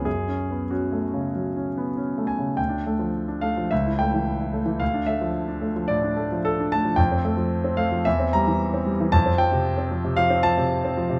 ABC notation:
X:1
M:4/4
L:1/16
Q:1/4=110
K:F#m
V:1 name="Grand piano"
G4 F8- F2 g2 | [K:Dm] g6 f2 e2 g6 | f2 e6 d4 A2 a2 | g6 f2 e2 b6 |
a2 g6 f2 a6 |]
V:2 name="Grand piano" clef=bass
(3F,,2 C2 B,2 (3C2 A,2 C,2 (3F,2 C2 B,2 (3C2 A,2 C,2 | [K:Dm] D,, D A, F,2 D A, F, ^C,, E A, E,2 E A, E, | D,, D A, F,2 D A, F, A,, D A, F,2 D A, F, | F,, C A, F,2 C A, F, E,, C G, E,2 C G, E, |
F,, C F, C,2 C F, C, F, C F, C,2 C F, C, |]